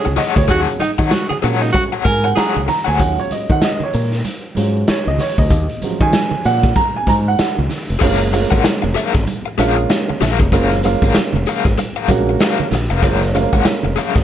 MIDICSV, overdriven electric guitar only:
0, 0, Header, 1, 3, 480
1, 0, Start_track
1, 0, Tempo, 626305
1, 377, Time_signature, 4, 2, 24, 8
1, 10912, End_track
2, 0, Start_track
2, 0, Title_t, "Overdriven electric guitar"
2, 0, Program_c, 0, 29
2, 127, Note_on_c, 0, 68, 94
2, 129, Note_on_c, 0, 73, 90
2, 139, Note_on_c, 0, 78, 89
2, 263, Note_off_c, 0, 78, 0
2, 274, Note_off_c, 0, 73, 0
2, 295, Note_off_c, 0, 68, 0
2, 368, Note_on_c, 0, 68, 87
2, 371, Note_on_c, 0, 73, 80
2, 383, Note_on_c, 0, 78, 96
2, 536, Note_off_c, 0, 68, 0
2, 538, Note_off_c, 0, 73, 0
2, 544, Note_off_c, 0, 78, 0
2, 755, Note_on_c, 0, 78, 70
2, 762, Note_on_c, 0, 73, 61
2, 765, Note_on_c, 0, 68, 57
2, 849, Note_off_c, 0, 78, 0
2, 852, Note_off_c, 0, 73, 0
2, 854, Note_off_c, 0, 68, 0
2, 1092, Note_on_c, 0, 68, 81
2, 1101, Note_on_c, 0, 73, 91
2, 1104, Note_on_c, 0, 78, 85
2, 1232, Note_off_c, 0, 78, 0
2, 1243, Note_off_c, 0, 73, 0
2, 1259, Note_off_c, 0, 68, 0
2, 1476, Note_on_c, 0, 78, 69
2, 1481, Note_on_c, 0, 73, 71
2, 1489, Note_on_c, 0, 68, 66
2, 1561, Note_off_c, 0, 68, 0
2, 1565, Note_off_c, 0, 73, 0
2, 1569, Note_off_c, 0, 78, 0
2, 1815, Note_on_c, 0, 68, 79
2, 1821, Note_on_c, 0, 73, 94
2, 1829, Note_on_c, 0, 78, 90
2, 1981, Note_off_c, 0, 68, 0
2, 1984, Note_off_c, 0, 73, 0
2, 1988, Note_off_c, 0, 78, 0
2, 2183, Note_on_c, 0, 78, 60
2, 2190, Note_on_c, 0, 73, 61
2, 2197, Note_on_c, 0, 68, 52
2, 2284, Note_off_c, 0, 78, 0
2, 2288, Note_off_c, 0, 73, 0
2, 2291, Note_off_c, 0, 68, 0
2, 6125, Note_on_c, 0, 68, 82
2, 6133, Note_on_c, 0, 70, 88
2, 6144, Note_on_c, 0, 77, 106
2, 6298, Note_off_c, 0, 68, 0
2, 6302, Note_off_c, 0, 70, 0
2, 6307, Note_off_c, 0, 77, 0
2, 6520, Note_on_c, 0, 78, 73
2, 6529, Note_on_c, 0, 70, 71
2, 6535, Note_on_c, 0, 68, 72
2, 6614, Note_off_c, 0, 78, 0
2, 6618, Note_off_c, 0, 70, 0
2, 6622, Note_off_c, 0, 68, 0
2, 6856, Note_on_c, 0, 68, 64
2, 6861, Note_on_c, 0, 70, 76
2, 6869, Note_on_c, 0, 77, 84
2, 6997, Note_off_c, 0, 77, 0
2, 7002, Note_off_c, 0, 70, 0
2, 7030, Note_off_c, 0, 68, 0
2, 7342, Note_on_c, 0, 68, 83
2, 7349, Note_on_c, 0, 70, 85
2, 7353, Note_on_c, 0, 77, 92
2, 7477, Note_off_c, 0, 77, 0
2, 7491, Note_off_c, 0, 70, 0
2, 7512, Note_off_c, 0, 68, 0
2, 7824, Note_on_c, 0, 68, 81
2, 7831, Note_on_c, 0, 70, 96
2, 7838, Note_on_c, 0, 77, 92
2, 7965, Note_off_c, 0, 77, 0
2, 7974, Note_off_c, 0, 70, 0
2, 7993, Note_off_c, 0, 68, 0
2, 8069, Note_on_c, 0, 68, 83
2, 8077, Note_on_c, 0, 70, 93
2, 8084, Note_on_c, 0, 77, 91
2, 8229, Note_off_c, 0, 68, 0
2, 8233, Note_off_c, 0, 70, 0
2, 8236, Note_off_c, 0, 77, 0
2, 8463, Note_on_c, 0, 77, 75
2, 8470, Note_on_c, 0, 70, 67
2, 8474, Note_on_c, 0, 68, 65
2, 8545, Note_off_c, 0, 77, 0
2, 8549, Note_off_c, 0, 70, 0
2, 8550, Note_off_c, 0, 68, 0
2, 8793, Note_on_c, 0, 68, 90
2, 8804, Note_on_c, 0, 70, 99
2, 8807, Note_on_c, 0, 77, 99
2, 8923, Note_off_c, 0, 77, 0
2, 8938, Note_off_c, 0, 70, 0
2, 8951, Note_off_c, 0, 68, 0
2, 9170, Note_on_c, 0, 77, 75
2, 9177, Note_on_c, 0, 70, 65
2, 9182, Note_on_c, 0, 68, 61
2, 9265, Note_off_c, 0, 68, 0
2, 9272, Note_off_c, 0, 70, 0
2, 9275, Note_off_c, 0, 77, 0
2, 9518, Note_on_c, 0, 68, 88
2, 9528, Note_on_c, 0, 70, 91
2, 9535, Note_on_c, 0, 77, 106
2, 9673, Note_off_c, 0, 68, 0
2, 9678, Note_off_c, 0, 70, 0
2, 9682, Note_off_c, 0, 77, 0
2, 9889, Note_on_c, 0, 77, 59
2, 9898, Note_on_c, 0, 70, 53
2, 9904, Note_on_c, 0, 68, 49
2, 9973, Note_off_c, 0, 68, 0
2, 9978, Note_off_c, 0, 77, 0
2, 9982, Note_off_c, 0, 70, 0
2, 9982, Note_on_c, 0, 68, 90
2, 9992, Note_on_c, 0, 70, 100
2, 9994, Note_on_c, 0, 77, 95
2, 10145, Note_off_c, 0, 68, 0
2, 10150, Note_off_c, 0, 70, 0
2, 10151, Note_off_c, 0, 77, 0
2, 10371, Note_on_c, 0, 78, 80
2, 10377, Note_on_c, 0, 70, 64
2, 10385, Note_on_c, 0, 68, 57
2, 10459, Note_off_c, 0, 78, 0
2, 10462, Note_off_c, 0, 70, 0
2, 10466, Note_off_c, 0, 68, 0
2, 10699, Note_on_c, 0, 68, 73
2, 10709, Note_on_c, 0, 70, 77
2, 10717, Note_on_c, 0, 77, 83
2, 10841, Note_off_c, 0, 77, 0
2, 10847, Note_off_c, 0, 70, 0
2, 10864, Note_off_c, 0, 68, 0
2, 10912, End_track
3, 0, Start_track
3, 0, Title_t, "Muted overdriven electric guitar strokes"
3, 40, Note_on_c, 9, 29, 41
3, 116, Note_off_c, 9, 29, 0
3, 272, Note_on_c, 9, 29, 42
3, 349, Note_off_c, 9, 29, 0
3, 616, Note_on_c, 9, 29, 48
3, 693, Note_off_c, 9, 29, 0
3, 1001, Note_on_c, 9, 29, 48
3, 1077, Note_off_c, 9, 29, 0
3, 1241, Note_on_c, 9, 29, 48
3, 1317, Note_off_c, 9, 29, 0
3, 1334, Note_on_c, 9, 29, 46
3, 1411, Note_off_c, 9, 29, 0
3, 1570, Note_on_c, 9, 29, 38
3, 1647, Note_off_c, 9, 29, 0
3, 1718, Note_on_c, 9, 29, 44
3, 1794, Note_off_c, 9, 29, 0
3, 2042, Note_on_c, 9, 29, 49
3, 2119, Note_off_c, 9, 29, 0
3, 6384, Note_on_c, 9, 29, 42
3, 6461, Note_off_c, 9, 29, 0
3, 6762, Note_on_c, 9, 29, 43
3, 6839, Note_off_c, 9, 29, 0
3, 7007, Note_on_c, 9, 29, 51
3, 7083, Note_off_c, 9, 29, 0
3, 7249, Note_on_c, 9, 29, 37
3, 7326, Note_off_c, 9, 29, 0
3, 7486, Note_on_c, 9, 29, 52
3, 7563, Note_off_c, 9, 29, 0
3, 7586, Note_on_c, 9, 29, 45
3, 7663, Note_off_c, 9, 29, 0
3, 7737, Note_on_c, 9, 29, 41
3, 7814, Note_off_c, 9, 29, 0
3, 7974, Note_on_c, 9, 29, 45
3, 8050, Note_off_c, 9, 29, 0
3, 8319, Note_on_c, 9, 29, 37
3, 8395, Note_off_c, 9, 29, 0
3, 8709, Note_on_c, 9, 29, 49
3, 8785, Note_off_c, 9, 29, 0
3, 8932, Note_on_c, 9, 29, 38
3, 9009, Note_off_c, 9, 29, 0
3, 9028, Note_on_c, 9, 29, 39
3, 9104, Note_off_c, 9, 29, 0
3, 9275, Note_on_c, 9, 29, 40
3, 9351, Note_off_c, 9, 29, 0
3, 9422, Note_on_c, 9, 29, 45
3, 9498, Note_off_c, 9, 29, 0
3, 9759, Note_on_c, 9, 29, 42
3, 9836, Note_off_c, 9, 29, 0
3, 10235, Note_on_c, 9, 29, 53
3, 10312, Note_off_c, 9, 29, 0
3, 10613, Note_on_c, 9, 29, 45
3, 10689, Note_off_c, 9, 29, 0
3, 10850, Note_on_c, 9, 29, 43
3, 10912, Note_off_c, 9, 29, 0
3, 10912, End_track
0, 0, End_of_file